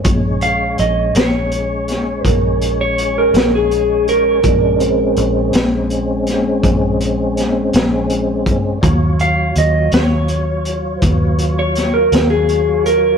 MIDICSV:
0, 0, Header, 1, 5, 480
1, 0, Start_track
1, 0, Key_signature, -5, "minor"
1, 0, Tempo, 731707
1, 33, Time_signature, 12, 3, 24, 8
1, 8645, End_track
2, 0, Start_track
2, 0, Title_t, "Clean electric guitar"
2, 0, Program_c, 0, 27
2, 279, Note_on_c, 0, 77, 77
2, 510, Note_off_c, 0, 77, 0
2, 522, Note_on_c, 0, 75, 79
2, 752, Note_off_c, 0, 75, 0
2, 764, Note_on_c, 0, 73, 81
2, 1479, Note_off_c, 0, 73, 0
2, 1479, Note_on_c, 0, 70, 81
2, 1814, Note_off_c, 0, 70, 0
2, 1844, Note_on_c, 0, 73, 73
2, 2073, Note_off_c, 0, 73, 0
2, 2087, Note_on_c, 0, 70, 68
2, 2314, Note_off_c, 0, 70, 0
2, 2330, Note_on_c, 0, 68, 67
2, 2672, Note_off_c, 0, 68, 0
2, 2682, Note_on_c, 0, 70, 78
2, 3613, Note_off_c, 0, 70, 0
2, 6041, Note_on_c, 0, 77, 71
2, 6271, Note_off_c, 0, 77, 0
2, 6286, Note_on_c, 0, 75, 68
2, 6513, Note_off_c, 0, 75, 0
2, 6520, Note_on_c, 0, 73, 83
2, 7228, Note_off_c, 0, 73, 0
2, 7228, Note_on_c, 0, 71, 83
2, 7571, Note_off_c, 0, 71, 0
2, 7603, Note_on_c, 0, 73, 77
2, 7831, Note_on_c, 0, 70, 73
2, 7832, Note_off_c, 0, 73, 0
2, 8066, Note_off_c, 0, 70, 0
2, 8071, Note_on_c, 0, 68, 71
2, 8422, Note_off_c, 0, 68, 0
2, 8436, Note_on_c, 0, 70, 86
2, 8645, Note_off_c, 0, 70, 0
2, 8645, End_track
3, 0, Start_track
3, 0, Title_t, "Tonewheel organ"
3, 0, Program_c, 1, 16
3, 24, Note_on_c, 1, 61, 58
3, 27, Note_on_c, 1, 73, 61
3, 29, Note_on_c, 1, 56, 59
3, 2885, Note_off_c, 1, 61, 0
3, 2887, Note_off_c, 1, 73, 0
3, 2888, Note_off_c, 1, 56, 0
3, 2902, Note_on_c, 1, 61, 54
3, 2904, Note_on_c, 1, 56, 54
3, 2905, Note_on_c, 1, 62, 54
3, 3140, Note_off_c, 1, 56, 0
3, 3143, Note_off_c, 1, 61, 0
3, 3145, Note_on_c, 1, 60, 62
3, 3148, Note_on_c, 1, 56, 59
3, 3151, Note_off_c, 1, 62, 0
3, 3151, Note_on_c, 1, 61, 62
3, 5763, Note_off_c, 1, 60, 0
3, 5765, Note_off_c, 1, 56, 0
3, 5766, Note_off_c, 1, 61, 0
3, 5780, Note_on_c, 1, 73, 57
3, 5785, Note_on_c, 1, 65, 55
3, 5789, Note_on_c, 1, 54, 57
3, 8642, Note_off_c, 1, 73, 0
3, 8645, Note_off_c, 1, 54, 0
3, 8645, Note_off_c, 1, 65, 0
3, 8645, End_track
4, 0, Start_track
4, 0, Title_t, "Fingered electric bass"
4, 0, Program_c, 2, 33
4, 31, Note_on_c, 2, 34, 90
4, 487, Note_off_c, 2, 34, 0
4, 519, Note_on_c, 2, 34, 86
4, 738, Note_off_c, 2, 34, 0
4, 752, Note_on_c, 2, 34, 81
4, 1448, Note_off_c, 2, 34, 0
4, 1475, Note_on_c, 2, 34, 96
4, 2170, Note_off_c, 2, 34, 0
4, 2189, Note_on_c, 2, 34, 80
4, 2886, Note_off_c, 2, 34, 0
4, 2910, Note_on_c, 2, 34, 89
4, 3367, Note_off_c, 2, 34, 0
4, 3394, Note_on_c, 2, 34, 88
4, 3615, Note_off_c, 2, 34, 0
4, 3632, Note_on_c, 2, 34, 78
4, 4327, Note_off_c, 2, 34, 0
4, 4352, Note_on_c, 2, 34, 92
4, 5047, Note_off_c, 2, 34, 0
4, 5079, Note_on_c, 2, 34, 75
4, 5771, Note_off_c, 2, 34, 0
4, 5791, Note_on_c, 2, 39, 88
4, 6247, Note_off_c, 2, 39, 0
4, 6271, Note_on_c, 2, 39, 85
4, 6494, Note_off_c, 2, 39, 0
4, 6509, Note_on_c, 2, 39, 80
4, 7206, Note_off_c, 2, 39, 0
4, 7231, Note_on_c, 2, 39, 95
4, 7927, Note_off_c, 2, 39, 0
4, 7952, Note_on_c, 2, 39, 80
4, 8645, Note_off_c, 2, 39, 0
4, 8645, End_track
5, 0, Start_track
5, 0, Title_t, "Drums"
5, 30, Note_on_c, 9, 42, 75
5, 32, Note_on_c, 9, 36, 94
5, 96, Note_off_c, 9, 42, 0
5, 98, Note_off_c, 9, 36, 0
5, 271, Note_on_c, 9, 42, 55
5, 337, Note_off_c, 9, 42, 0
5, 513, Note_on_c, 9, 42, 51
5, 578, Note_off_c, 9, 42, 0
5, 755, Note_on_c, 9, 42, 81
5, 770, Note_on_c, 9, 38, 95
5, 820, Note_off_c, 9, 42, 0
5, 835, Note_off_c, 9, 38, 0
5, 995, Note_on_c, 9, 42, 52
5, 1061, Note_off_c, 9, 42, 0
5, 1234, Note_on_c, 9, 42, 50
5, 1249, Note_on_c, 9, 38, 26
5, 1300, Note_off_c, 9, 42, 0
5, 1315, Note_off_c, 9, 38, 0
5, 1474, Note_on_c, 9, 36, 71
5, 1476, Note_on_c, 9, 42, 68
5, 1539, Note_off_c, 9, 36, 0
5, 1542, Note_off_c, 9, 42, 0
5, 1716, Note_on_c, 9, 42, 55
5, 1781, Note_off_c, 9, 42, 0
5, 1957, Note_on_c, 9, 42, 51
5, 2022, Note_off_c, 9, 42, 0
5, 2193, Note_on_c, 9, 42, 72
5, 2208, Note_on_c, 9, 38, 90
5, 2258, Note_off_c, 9, 42, 0
5, 2273, Note_off_c, 9, 38, 0
5, 2436, Note_on_c, 9, 42, 51
5, 2502, Note_off_c, 9, 42, 0
5, 2675, Note_on_c, 9, 42, 53
5, 2741, Note_off_c, 9, 42, 0
5, 2910, Note_on_c, 9, 42, 66
5, 2912, Note_on_c, 9, 36, 93
5, 2975, Note_off_c, 9, 42, 0
5, 2978, Note_off_c, 9, 36, 0
5, 3151, Note_on_c, 9, 42, 54
5, 3216, Note_off_c, 9, 42, 0
5, 3389, Note_on_c, 9, 42, 51
5, 3455, Note_off_c, 9, 42, 0
5, 3629, Note_on_c, 9, 42, 75
5, 3644, Note_on_c, 9, 38, 97
5, 3694, Note_off_c, 9, 42, 0
5, 3709, Note_off_c, 9, 38, 0
5, 3872, Note_on_c, 9, 42, 54
5, 3938, Note_off_c, 9, 42, 0
5, 4112, Note_on_c, 9, 42, 53
5, 4127, Note_on_c, 9, 38, 26
5, 4177, Note_off_c, 9, 42, 0
5, 4192, Note_off_c, 9, 38, 0
5, 4352, Note_on_c, 9, 36, 72
5, 4352, Note_on_c, 9, 42, 72
5, 4418, Note_off_c, 9, 36, 0
5, 4418, Note_off_c, 9, 42, 0
5, 4596, Note_on_c, 9, 42, 53
5, 4662, Note_off_c, 9, 42, 0
5, 4837, Note_on_c, 9, 42, 57
5, 4852, Note_on_c, 9, 38, 28
5, 4902, Note_off_c, 9, 42, 0
5, 4917, Note_off_c, 9, 38, 0
5, 5074, Note_on_c, 9, 42, 75
5, 5089, Note_on_c, 9, 38, 97
5, 5139, Note_off_c, 9, 42, 0
5, 5154, Note_off_c, 9, 38, 0
5, 5312, Note_on_c, 9, 42, 56
5, 5378, Note_off_c, 9, 42, 0
5, 5551, Note_on_c, 9, 36, 68
5, 5553, Note_on_c, 9, 42, 51
5, 5617, Note_off_c, 9, 36, 0
5, 5618, Note_off_c, 9, 42, 0
5, 5792, Note_on_c, 9, 36, 89
5, 5794, Note_on_c, 9, 42, 73
5, 5857, Note_off_c, 9, 36, 0
5, 5860, Note_off_c, 9, 42, 0
5, 6031, Note_on_c, 9, 42, 51
5, 6097, Note_off_c, 9, 42, 0
5, 6269, Note_on_c, 9, 42, 54
5, 6335, Note_off_c, 9, 42, 0
5, 6506, Note_on_c, 9, 42, 72
5, 6521, Note_on_c, 9, 38, 99
5, 6571, Note_off_c, 9, 42, 0
5, 6586, Note_off_c, 9, 38, 0
5, 6746, Note_on_c, 9, 42, 54
5, 6812, Note_off_c, 9, 42, 0
5, 6988, Note_on_c, 9, 42, 50
5, 7054, Note_off_c, 9, 42, 0
5, 7228, Note_on_c, 9, 42, 64
5, 7230, Note_on_c, 9, 36, 72
5, 7294, Note_off_c, 9, 42, 0
5, 7296, Note_off_c, 9, 36, 0
5, 7470, Note_on_c, 9, 42, 53
5, 7535, Note_off_c, 9, 42, 0
5, 7711, Note_on_c, 9, 42, 55
5, 7726, Note_on_c, 9, 38, 28
5, 7777, Note_off_c, 9, 42, 0
5, 7792, Note_off_c, 9, 38, 0
5, 7952, Note_on_c, 9, 42, 75
5, 7967, Note_on_c, 9, 38, 93
5, 8018, Note_off_c, 9, 42, 0
5, 8033, Note_off_c, 9, 38, 0
5, 8192, Note_on_c, 9, 42, 55
5, 8258, Note_off_c, 9, 42, 0
5, 8435, Note_on_c, 9, 42, 54
5, 8501, Note_off_c, 9, 42, 0
5, 8645, End_track
0, 0, End_of_file